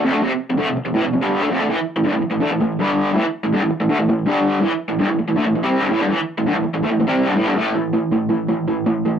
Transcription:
0.03 F2 C3
0.12 D3 A3
0.21 F2 C3
0.31 muted overdriven electric guitar stroke
0.50 F2 C3
0.57 D3 A3
0.66 F2 C3
0.77 muted overdriven electric guitar stroke
0.85 F2 C3
0.94 A2 E3
1.03 F2 C3
1.13 F2 C3
1.21 G2 D3 G3
1.40 D3 A3
1.50 F2 C3
1.59 D3 A3
1.69 A2 E3
1.78 muted overdriven electric guitar stroke
1.96 A2 E3
2.04 G2 D3
2.13 A2 E3
2.23 muted overdriven electric guitar stroke
2.31 A2 E3
2.41 D3 A3
2.52 A2 E3
2.61 A2 E3
2.79 G2 D3 G3
3.14 A2 E3
3.25 muted overdriven electric guitar stroke
3.44 A2 E3
3.53 G2 D3
3.61 A2 E3
3.71 muted overdriven electric guitar stroke
3.80 A2 E3
3.89 D3 A3
4.00 A2 E3
4.09 A2 E3
4.26 G2 D3 G3
4.61 A2 E3
4.72 muted overdriven electric guitar stroke
4.88 A2 E3
4.99 G2 D3
5.07 A2 E3
5.19 muted overdriven electric guitar stroke
5.28 A2 E3
5.36 D3 A3
5.46 A2 E3
5.55 A2 E3
5.63 C3 G3 C4
5.81 G2 D3
5.90 A2 E3
6.00 G2 D3
6.09 A2 E3
6.19 muted overdriven electric guitar stroke
6.38 A2 E3
6.46 G2 D3
6.55 A2 E3
6.64 muted overdriven electric guitar stroke
6.74 A2 E3
6.83 D3 A3
6.90 A2 E3
7.00 A2 E3
7.07 C3 G3 C4
7.26 G2 D3
7.35 A2 E3
7.46 G2 D3
7.56 A2 E3 A3
7.75 A2 E3
7.93 A2 E3
8.12 A2 E3
8.30 A2 E3
8.49 A2 E3
8.68 A2 E3
8.86 A2 E3
9.06 A2 E3

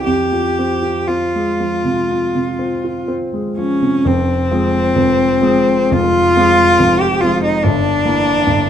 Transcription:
0.06 F2 G4
0.32 F3
0.59 C4
0.82 F4
1.08 C4 F4
1.35 G#3
1.60 F3
1.84 C3
2.11 F3
2.35 C3
2.59 C4
2.84 F4
3.08 C4
3.33 G#3
3.58 F3 C#4
3.82 C3
4.05 F1 F2 C4
4.51 F3 G#3 C4
4.95 F1 F2
5.41 F3 G#3 C4
5.90 F1 F2 F4
6.37 F3 G#3 C4
6.79 F1 F2
7.01 G4
7.21 F3 G#3 C4 F4
7.44 D#4
7.63 G1 G2 D4
8.05 E3 A#3
8.46 G1 G2

